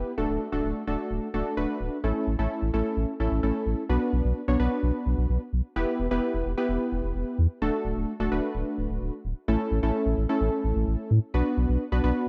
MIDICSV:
0, 0, Header, 1, 3, 480
1, 0, Start_track
1, 0, Key_signature, 2, "major"
1, 0, Tempo, 465116
1, 182, Time_signature, 4, 2, 24, 8
1, 12679, End_track
2, 0, Start_track
2, 0, Title_t, "Synth keys"
2, 0, Program_c, 0, 88
2, 0, Note_on_c, 0, 59, 85
2, 0, Note_on_c, 0, 64, 76
2, 0, Note_on_c, 0, 67, 75
2, 0, Note_on_c, 0, 71, 94
2, 121, Note_off_c, 0, 64, 0
2, 121, Note_off_c, 0, 67, 0
2, 121, Note_off_c, 0, 71, 0
2, 122, Note_off_c, 0, 59, 0
2, 182, Note_on_c, 0, 57, 84
2, 182, Note_on_c, 0, 62, 79
2, 182, Note_on_c, 0, 66, 77
2, 182, Note_on_c, 0, 69, 91
2, 496, Note_off_c, 0, 57, 0
2, 496, Note_off_c, 0, 62, 0
2, 496, Note_off_c, 0, 66, 0
2, 496, Note_off_c, 0, 69, 0
2, 541, Note_on_c, 0, 57, 85
2, 541, Note_on_c, 0, 62, 75
2, 541, Note_on_c, 0, 66, 78
2, 541, Note_on_c, 0, 69, 93
2, 856, Note_off_c, 0, 57, 0
2, 856, Note_off_c, 0, 62, 0
2, 856, Note_off_c, 0, 66, 0
2, 856, Note_off_c, 0, 69, 0
2, 902, Note_on_c, 0, 57, 81
2, 902, Note_on_c, 0, 62, 77
2, 902, Note_on_c, 0, 66, 80
2, 902, Note_on_c, 0, 69, 94
2, 1321, Note_off_c, 0, 57, 0
2, 1321, Note_off_c, 0, 62, 0
2, 1321, Note_off_c, 0, 66, 0
2, 1321, Note_off_c, 0, 69, 0
2, 1382, Note_on_c, 0, 69, 93
2, 1383, Note_on_c, 0, 57, 84
2, 1383, Note_on_c, 0, 62, 76
2, 1383, Note_on_c, 0, 66, 78
2, 1592, Note_off_c, 0, 57, 0
2, 1592, Note_off_c, 0, 62, 0
2, 1592, Note_off_c, 0, 66, 0
2, 1592, Note_off_c, 0, 69, 0
2, 1622, Note_on_c, 0, 57, 84
2, 1622, Note_on_c, 0, 62, 76
2, 1622, Note_on_c, 0, 66, 79
2, 1622, Note_on_c, 0, 71, 97
2, 2041, Note_off_c, 0, 57, 0
2, 2041, Note_off_c, 0, 62, 0
2, 2041, Note_off_c, 0, 66, 0
2, 2041, Note_off_c, 0, 71, 0
2, 2103, Note_on_c, 0, 57, 86
2, 2103, Note_on_c, 0, 61, 77
2, 2103, Note_on_c, 0, 64, 79
2, 2103, Note_on_c, 0, 69, 91
2, 2417, Note_off_c, 0, 57, 0
2, 2417, Note_off_c, 0, 61, 0
2, 2417, Note_off_c, 0, 64, 0
2, 2417, Note_off_c, 0, 69, 0
2, 2462, Note_on_c, 0, 61, 77
2, 2463, Note_on_c, 0, 57, 83
2, 2463, Note_on_c, 0, 64, 77
2, 2463, Note_on_c, 0, 69, 92
2, 2776, Note_off_c, 0, 61, 0
2, 2777, Note_off_c, 0, 57, 0
2, 2777, Note_off_c, 0, 64, 0
2, 2777, Note_off_c, 0, 69, 0
2, 2821, Note_on_c, 0, 57, 83
2, 2821, Note_on_c, 0, 61, 73
2, 2821, Note_on_c, 0, 64, 73
2, 2821, Note_on_c, 0, 69, 95
2, 3241, Note_off_c, 0, 57, 0
2, 3241, Note_off_c, 0, 61, 0
2, 3241, Note_off_c, 0, 64, 0
2, 3241, Note_off_c, 0, 69, 0
2, 3302, Note_on_c, 0, 57, 84
2, 3302, Note_on_c, 0, 69, 92
2, 3303, Note_on_c, 0, 61, 76
2, 3303, Note_on_c, 0, 64, 77
2, 3512, Note_off_c, 0, 57, 0
2, 3512, Note_off_c, 0, 61, 0
2, 3512, Note_off_c, 0, 64, 0
2, 3512, Note_off_c, 0, 69, 0
2, 3542, Note_on_c, 0, 57, 81
2, 3542, Note_on_c, 0, 61, 77
2, 3542, Note_on_c, 0, 64, 75
2, 3542, Note_on_c, 0, 69, 88
2, 3961, Note_off_c, 0, 57, 0
2, 3961, Note_off_c, 0, 61, 0
2, 3961, Note_off_c, 0, 64, 0
2, 3961, Note_off_c, 0, 69, 0
2, 4021, Note_on_c, 0, 59, 89
2, 4021, Note_on_c, 0, 62, 82
2, 4021, Note_on_c, 0, 66, 81
2, 4022, Note_on_c, 0, 71, 95
2, 4545, Note_off_c, 0, 62, 0
2, 4545, Note_off_c, 0, 66, 0
2, 4546, Note_off_c, 0, 59, 0
2, 4546, Note_off_c, 0, 71, 0
2, 4622, Note_on_c, 0, 62, 80
2, 4623, Note_on_c, 0, 59, 86
2, 4623, Note_on_c, 0, 66, 79
2, 4623, Note_on_c, 0, 73, 94
2, 4727, Note_off_c, 0, 59, 0
2, 4727, Note_off_c, 0, 62, 0
2, 4727, Note_off_c, 0, 66, 0
2, 4727, Note_off_c, 0, 73, 0
2, 4741, Note_on_c, 0, 59, 90
2, 4741, Note_on_c, 0, 62, 80
2, 4741, Note_on_c, 0, 66, 79
2, 4741, Note_on_c, 0, 71, 95
2, 5580, Note_off_c, 0, 59, 0
2, 5580, Note_off_c, 0, 62, 0
2, 5580, Note_off_c, 0, 66, 0
2, 5580, Note_off_c, 0, 71, 0
2, 5942, Note_on_c, 0, 59, 88
2, 5942, Note_on_c, 0, 64, 83
2, 5942, Note_on_c, 0, 67, 82
2, 5942, Note_on_c, 0, 71, 98
2, 6256, Note_off_c, 0, 59, 0
2, 6256, Note_off_c, 0, 64, 0
2, 6256, Note_off_c, 0, 71, 0
2, 6257, Note_off_c, 0, 67, 0
2, 6302, Note_on_c, 0, 59, 87
2, 6302, Note_on_c, 0, 71, 100
2, 6303, Note_on_c, 0, 64, 81
2, 6303, Note_on_c, 0, 67, 81
2, 6721, Note_off_c, 0, 59, 0
2, 6721, Note_off_c, 0, 71, 0
2, 6722, Note_off_c, 0, 64, 0
2, 6722, Note_off_c, 0, 67, 0
2, 6783, Note_on_c, 0, 59, 87
2, 6783, Note_on_c, 0, 64, 77
2, 6783, Note_on_c, 0, 67, 82
2, 6783, Note_on_c, 0, 71, 96
2, 7620, Note_off_c, 0, 64, 0
2, 7620, Note_off_c, 0, 67, 0
2, 7620, Note_off_c, 0, 71, 0
2, 7621, Note_off_c, 0, 59, 0
2, 7862, Note_on_c, 0, 62, 82
2, 7863, Note_on_c, 0, 57, 89
2, 7863, Note_on_c, 0, 66, 84
2, 7863, Note_on_c, 0, 69, 100
2, 8386, Note_off_c, 0, 57, 0
2, 8386, Note_off_c, 0, 62, 0
2, 8386, Note_off_c, 0, 66, 0
2, 8386, Note_off_c, 0, 69, 0
2, 8463, Note_on_c, 0, 57, 84
2, 8463, Note_on_c, 0, 62, 79
2, 8463, Note_on_c, 0, 66, 78
2, 8463, Note_on_c, 0, 69, 96
2, 8567, Note_off_c, 0, 57, 0
2, 8567, Note_off_c, 0, 62, 0
2, 8567, Note_off_c, 0, 66, 0
2, 8568, Note_off_c, 0, 69, 0
2, 8583, Note_on_c, 0, 71, 97
2, 8584, Note_on_c, 0, 57, 86
2, 8584, Note_on_c, 0, 62, 80
2, 8584, Note_on_c, 0, 66, 81
2, 9421, Note_off_c, 0, 57, 0
2, 9421, Note_off_c, 0, 62, 0
2, 9421, Note_off_c, 0, 66, 0
2, 9421, Note_off_c, 0, 71, 0
2, 9783, Note_on_c, 0, 57, 90
2, 9783, Note_on_c, 0, 61, 81
2, 9783, Note_on_c, 0, 64, 81
2, 9783, Note_on_c, 0, 69, 98
2, 10097, Note_off_c, 0, 57, 0
2, 10097, Note_off_c, 0, 61, 0
2, 10097, Note_off_c, 0, 64, 0
2, 10097, Note_off_c, 0, 69, 0
2, 10143, Note_on_c, 0, 57, 88
2, 10143, Note_on_c, 0, 61, 78
2, 10143, Note_on_c, 0, 64, 79
2, 10143, Note_on_c, 0, 69, 93
2, 10562, Note_off_c, 0, 57, 0
2, 10562, Note_off_c, 0, 61, 0
2, 10562, Note_off_c, 0, 64, 0
2, 10562, Note_off_c, 0, 69, 0
2, 10622, Note_on_c, 0, 57, 83
2, 10622, Note_on_c, 0, 69, 95
2, 10623, Note_on_c, 0, 61, 77
2, 10623, Note_on_c, 0, 64, 78
2, 11460, Note_off_c, 0, 57, 0
2, 11460, Note_off_c, 0, 69, 0
2, 11461, Note_off_c, 0, 61, 0
2, 11461, Note_off_c, 0, 64, 0
2, 11702, Note_on_c, 0, 62, 82
2, 11702, Note_on_c, 0, 71, 95
2, 11703, Note_on_c, 0, 59, 86
2, 11703, Note_on_c, 0, 66, 82
2, 12226, Note_off_c, 0, 59, 0
2, 12226, Note_off_c, 0, 62, 0
2, 12226, Note_off_c, 0, 66, 0
2, 12226, Note_off_c, 0, 71, 0
2, 12302, Note_on_c, 0, 59, 88
2, 12302, Note_on_c, 0, 62, 77
2, 12302, Note_on_c, 0, 66, 79
2, 12302, Note_on_c, 0, 71, 95
2, 12407, Note_off_c, 0, 59, 0
2, 12407, Note_off_c, 0, 62, 0
2, 12407, Note_off_c, 0, 66, 0
2, 12407, Note_off_c, 0, 71, 0
2, 12423, Note_on_c, 0, 59, 89
2, 12423, Note_on_c, 0, 62, 78
2, 12423, Note_on_c, 0, 66, 78
2, 12423, Note_on_c, 0, 71, 99
2, 12679, Note_off_c, 0, 59, 0
2, 12679, Note_off_c, 0, 62, 0
2, 12679, Note_off_c, 0, 66, 0
2, 12679, Note_off_c, 0, 71, 0
2, 12679, End_track
3, 0, Start_track
3, 0, Title_t, "Sub bass"
3, 0, Program_c, 1, 38
3, 184, Note_on_c, 1, 26, 116
3, 270, Note_off_c, 1, 26, 0
3, 303, Note_on_c, 1, 26, 104
3, 389, Note_off_c, 1, 26, 0
3, 543, Note_on_c, 1, 26, 102
3, 629, Note_off_c, 1, 26, 0
3, 664, Note_on_c, 1, 26, 105
3, 750, Note_off_c, 1, 26, 0
3, 903, Note_on_c, 1, 26, 106
3, 989, Note_off_c, 1, 26, 0
3, 1142, Note_on_c, 1, 26, 107
3, 1229, Note_off_c, 1, 26, 0
3, 1382, Note_on_c, 1, 26, 96
3, 1469, Note_off_c, 1, 26, 0
3, 1623, Note_on_c, 1, 26, 99
3, 1709, Note_off_c, 1, 26, 0
3, 1862, Note_on_c, 1, 26, 96
3, 1949, Note_off_c, 1, 26, 0
3, 2102, Note_on_c, 1, 33, 113
3, 2188, Note_off_c, 1, 33, 0
3, 2342, Note_on_c, 1, 33, 90
3, 2428, Note_off_c, 1, 33, 0
3, 2462, Note_on_c, 1, 33, 95
3, 2548, Note_off_c, 1, 33, 0
3, 2702, Note_on_c, 1, 33, 100
3, 2789, Note_off_c, 1, 33, 0
3, 2823, Note_on_c, 1, 33, 83
3, 2909, Note_off_c, 1, 33, 0
3, 3062, Note_on_c, 1, 33, 103
3, 3148, Note_off_c, 1, 33, 0
3, 3302, Note_on_c, 1, 33, 103
3, 3388, Note_off_c, 1, 33, 0
3, 3422, Note_on_c, 1, 33, 98
3, 3508, Note_off_c, 1, 33, 0
3, 3542, Note_on_c, 1, 33, 92
3, 3628, Note_off_c, 1, 33, 0
3, 3781, Note_on_c, 1, 33, 86
3, 3868, Note_off_c, 1, 33, 0
3, 4022, Note_on_c, 1, 35, 107
3, 4108, Note_off_c, 1, 35, 0
3, 4262, Note_on_c, 1, 35, 105
3, 4349, Note_off_c, 1, 35, 0
3, 4382, Note_on_c, 1, 35, 107
3, 4469, Note_off_c, 1, 35, 0
3, 4621, Note_on_c, 1, 35, 96
3, 4708, Note_off_c, 1, 35, 0
3, 4742, Note_on_c, 1, 35, 92
3, 4828, Note_off_c, 1, 35, 0
3, 4983, Note_on_c, 1, 35, 112
3, 5069, Note_off_c, 1, 35, 0
3, 5223, Note_on_c, 1, 35, 103
3, 5309, Note_off_c, 1, 35, 0
3, 5343, Note_on_c, 1, 35, 104
3, 5429, Note_off_c, 1, 35, 0
3, 5462, Note_on_c, 1, 35, 108
3, 5549, Note_off_c, 1, 35, 0
3, 5704, Note_on_c, 1, 35, 90
3, 5790, Note_off_c, 1, 35, 0
3, 5943, Note_on_c, 1, 28, 111
3, 6029, Note_off_c, 1, 28, 0
3, 6184, Note_on_c, 1, 28, 102
3, 6270, Note_off_c, 1, 28, 0
3, 6303, Note_on_c, 1, 28, 100
3, 6389, Note_off_c, 1, 28, 0
3, 6542, Note_on_c, 1, 28, 101
3, 6629, Note_off_c, 1, 28, 0
3, 6663, Note_on_c, 1, 28, 101
3, 6749, Note_off_c, 1, 28, 0
3, 6902, Note_on_c, 1, 28, 112
3, 6989, Note_off_c, 1, 28, 0
3, 7143, Note_on_c, 1, 28, 107
3, 7229, Note_off_c, 1, 28, 0
3, 7262, Note_on_c, 1, 28, 106
3, 7348, Note_off_c, 1, 28, 0
3, 7381, Note_on_c, 1, 28, 99
3, 7468, Note_off_c, 1, 28, 0
3, 7622, Note_on_c, 1, 40, 97
3, 7708, Note_off_c, 1, 40, 0
3, 7862, Note_on_c, 1, 26, 107
3, 7948, Note_off_c, 1, 26, 0
3, 8102, Note_on_c, 1, 26, 104
3, 8189, Note_off_c, 1, 26, 0
3, 8223, Note_on_c, 1, 26, 98
3, 8309, Note_off_c, 1, 26, 0
3, 8462, Note_on_c, 1, 26, 94
3, 8549, Note_off_c, 1, 26, 0
3, 8582, Note_on_c, 1, 26, 100
3, 8669, Note_off_c, 1, 26, 0
3, 8822, Note_on_c, 1, 26, 111
3, 8909, Note_off_c, 1, 26, 0
3, 9063, Note_on_c, 1, 26, 107
3, 9149, Note_off_c, 1, 26, 0
3, 9182, Note_on_c, 1, 26, 104
3, 9269, Note_off_c, 1, 26, 0
3, 9303, Note_on_c, 1, 26, 103
3, 9389, Note_off_c, 1, 26, 0
3, 9542, Note_on_c, 1, 26, 104
3, 9629, Note_off_c, 1, 26, 0
3, 9782, Note_on_c, 1, 33, 113
3, 9869, Note_off_c, 1, 33, 0
3, 10023, Note_on_c, 1, 33, 104
3, 10109, Note_off_c, 1, 33, 0
3, 10142, Note_on_c, 1, 33, 99
3, 10229, Note_off_c, 1, 33, 0
3, 10382, Note_on_c, 1, 33, 103
3, 10469, Note_off_c, 1, 33, 0
3, 10501, Note_on_c, 1, 33, 97
3, 10588, Note_off_c, 1, 33, 0
3, 10742, Note_on_c, 1, 33, 112
3, 10828, Note_off_c, 1, 33, 0
3, 10982, Note_on_c, 1, 33, 101
3, 11068, Note_off_c, 1, 33, 0
3, 11102, Note_on_c, 1, 33, 110
3, 11189, Note_off_c, 1, 33, 0
3, 11222, Note_on_c, 1, 33, 99
3, 11308, Note_off_c, 1, 33, 0
3, 11462, Note_on_c, 1, 45, 105
3, 11549, Note_off_c, 1, 45, 0
3, 11702, Note_on_c, 1, 35, 110
3, 11789, Note_off_c, 1, 35, 0
3, 11943, Note_on_c, 1, 35, 114
3, 12029, Note_off_c, 1, 35, 0
3, 12063, Note_on_c, 1, 35, 108
3, 12149, Note_off_c, 1, 35, 0
3, 12302, Note_on_c, 1, 35, 101
3, 12388, Note_off_c, 1, 35, 0
3, 12422, Note_on_c, 1, 35, 91
3, 12509, Note_off_c, 1, 35, 0
3, 12679, End_track
0, 0, End_of_file